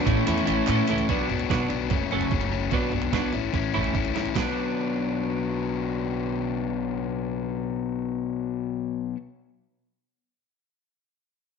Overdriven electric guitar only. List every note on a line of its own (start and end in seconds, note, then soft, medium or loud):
0.05 0.25 A2 medium
0.05 0.25 E3 medium
0.05 0.25 A3 medium
0.05 0.26 C#4 loud
0.05 0.26 E4 loud
0.26 0.44 A2 loud
0.26 0.45 E3 medium
0.26 0.46 A3 loud
0.26 0.46 C#4 medium
0.26 0.46 E4 loud
0.45 0.67 A2 medium
0.45 0.67 E3 medium
0.45 0.68 A3 medium
0.45 0.68 C#4 loud
0.45 0.68 E4 medium
0.68 0.86 A2 loud
0.68 0.86 E3 medium
0.68 0.87 A3 medium
0.68 0.88 C#4 medium
0.68 0.88 E4 loud
0.87 1.07 A2 medium
0.87 1.07 E3 medium
0.87 1.07 A3 medium
0.87 1.08 C#4 loud
0.87 1.08 E4 loud
1.08 1.48 B2 medium
1.08 1.30 F#3 medium
1.08 1.29 B3 medium
1.08 1.28 D4 loud
1.29 1.49 F#3 soft
1.29 1.50 B3 medium
1.29 1.51 D4 medium
1.49 1.70 B2 medium
1.49 1.70 F#3 medium
1.49 1.69 B3 medium
1.49 1.67 D4 medium
1.69 1.90 B2 medium
1.69 1.90 F#3 medium
1.69 1.89 B3 medium
1.69 1.88 D4 medium
1.90 2.13 F#2 medium
1.90 2.12 C#3 medium
1.90 2.11 F#3 medium
1.90 2.11 A3 loud
1.90 2.10 C#4 medium
2.11 2.53 F#2 medium
2.11 2.30 C#3 medium
2.11 2.31 F#3 medium
2.11 2.32 A3 medium
2.11 2.33 C#4 medium
2.31 2.70 C#3 medium
2.31 2.53 F#3 medium
2.31 2.51 A3 medium
2.31 2.50 C#4 medium
2.52 2.71 F#3 soft
2.52 2.71 A3 medium
2.52 2.71 C#4 medium
2.71 3.11 B2 medium
2.71 2.94 F#3 loud
2.71 2.93 B3 loud
2.71 2.91 D4 medium
2.93 3.12 F#3 soft
2.93 3.13 B3 soft
2.93 3.14 D4 medium
3.12 3.32 B2 medium
3.12 3.32 F#3 medium
3.12 3.33 B3 medium
3.12 3.33 D4 medium
3.33 3.75 A2 medium
3.33 3.51 E3 medium
3.33 3.53 A3 medium
3.33 3.53 C#4 medium
3.33 3.54 E4 medium
3.53 3.74 E3 medium
3.53 3.74 A3 medium
3.53 3.73 C#4 medium
3.53 3.72 E4 medium
3.73 4.17 A2 medium
3.73 3.92 E3 medium
3.73 3.94 A3 medium
3.73 3.94 C#4 medium
3.73 3.95 E4 medium
3.94 4.33 E3 medium
3.94 4.15 A3 medium
3.94 4.14 C#4 medium
3.94 4.12 E4 medium
4.13 4.35 A3 soft
4.13 4.35 C#4 medium
4.13 4.34 E4 medium
4.34 9.15 B2 medium
4.34 9.16 F#3 medium
4.34 9.17 B3 medium
4.39 9.17 D4 loud